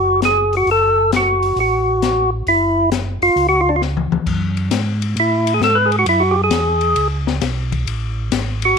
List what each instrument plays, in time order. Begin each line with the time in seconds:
Already playing: tonewheel organ F#1 F#4
0.22 tonewheel organ G#4, snare, closed hi-hat
0.53 open hi-hat
0.57 tonewheel organ F#4
0.66 tonewheel organ F#1, open hi-hat
0.71 tonewheel organ A4
1.12 tonewheel organ F#4, snare, closed hi-hat
1.43 open hi-hat
1.56 tonewheel organ A1, open hi-hat
1.60 tonewheel organ F#4
2.02 snare, closed hi-hat
2.47 tonewheel organ F#1 E4, open hi-hat
2.92 snare, closed hi-hat
3.22 tonewheel organ F#1 F4, open hi-hat
3.36 tonewheel organ C#2, open hi-hat
3.49 tonewheel organ F#4
3.61 tonewheel organ F4
3.69 tonewheel organ D4
3.76 tonewheel organ F4
3.82 snare
3.97 mid tom
4.11 tonewheel organ C#2, mid tom
4.26 tonewheel organ F#2, kick, crash
4.57 ride
4.71 tonewheel organ G#2, snare, hi-hat pedal, ride
5.02 ride
5.16 tonewheel organ A2 E4, ride
5.47 ride
5.54 tonewheel organ G#4
5.60 tonewheel organ G#2 A4, snare, hi-hat pedal
5.75 tonewheel organ B4
5.86 tonewheel organ G#4
5.92 ride
5.99 tonewheel organ F#4
6.06 tonewheel organ F#2 E4, ride
6.20 tonewheel organ F#4
6.31 tonewheel organ G4
6.44 tonewheel organ G#4
6.51 tonewheel organ E2, snare, hi-hat pedal, ride
6.81 ride
6.96 tonewheel organ C#2, ride
7.27 snare
7.41 tonewheel organ B1, snare, hi-hat pedal, ride
7.72 kick, ride
7.86 tonewheel organ A1, ride
8.31 tonewheel organ G#1, snare, hi-hat pedal, ride
8.62 tonewheel organ F#4, ride